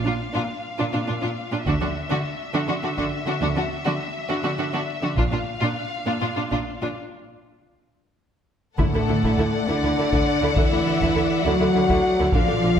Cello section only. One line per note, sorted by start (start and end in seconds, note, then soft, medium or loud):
0.07 0.13 A#2 soft
0.36 0.41 A#2 medium
0.79 0.85 A#2 medium
0.94 1.00 A#2 soft
1.09 1.15 A#2 soft
1.23 1.29 A#2 medium
1.52 1.58 A#2 soft
1.67 1.73 D3 medium
1.82 1.87 D3 soft
2.10 2.16 D3 medium
2.54 2.60 D3 medium
2.68 2.74 D3 soft
2.83 2.89 D3 soft
2.98 3.03 D3 medium
3.26 3.32 D3 soft
3.41 3.47 D3 medium
3.56 3.62 D3 soft
3.85 3.91 D3 medium
4.29 4.35 D3 medium
4.43 4.49 D3 soft
4.58 4.64 D3 soft
4.73 4.79 D3 medium
5.03 5.09 D3 soft
5.17 5.23 A#2 medium
5.32 5.38 A#2 soft
5.62 5.68 A#2 medium
6.07 6.13 A#2 medium
6.22 6.28 A#2 soft
6.37 6.43 A#2 soft
6.52 6.58 A#2 medium
6.82 6.88 A#2 soft
8.78 9.64 A2 soft
9.68 10.55 D3 medium
10.57 11.45 E3 medium
11.45 12.33 F#3 medium
12.34 12.80 F3 medium